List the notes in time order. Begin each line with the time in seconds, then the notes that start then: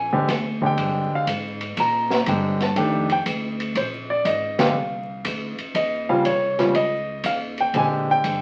Already playing: A#1 G#5
0.13 D3 G#3 C4 G4
0.28 D2, kick, snare, hi-hat pedal, ride
0.62 D3 G#3 C4 G4, kick
0.66 G5
0.77 G2, kick, ride
1.11 muted upright bass stroke
1.15 F5
1.27 G#2, kick, hi-hat pedal, ride
1.61 ride
1.77 A#2 A#5, kick, ride
2.10 snare
2.26 G2 D3 G#3 C4 G4, kick, hi-hat pedal, ride
2.60 A5, snare, ride
2.76 F2 D#3 A3 D4 G4, kick, ride
3.10 G5, ride
3.26 D2, kick, hi-hat pedal, ride
3.60 ride
3.75 A#1 C5, kick, ride
4.10 D5
4.25 G#1 D#5, kick, hi-hat pedal, ride
4.59 D3 G#3 C4 G4 F5, snare, ride
4.74 C2
5.24 D2, kick, hi-hat pedal, ride
5.58 muted upright bass stroke, ride
5.74 D#2 D#5, kick, ride
6.09 C#3 G3 C4 F4 F5
6.24 C2 C#5, kick, hi-hat pedal, ride
6.59 C#3 G3 C4 F4, snare, ride
6.74 C#2 D#5, kick, ride
7.24 D#2 F5, kick, hi-hat pedal, ride
7.58 G5, ride
7.73 A#2 D3 G#3 C4 G4, kick, ride
7.77 G#5
8.11 G5
8.24 G2, kick, hi-hat pedal, ride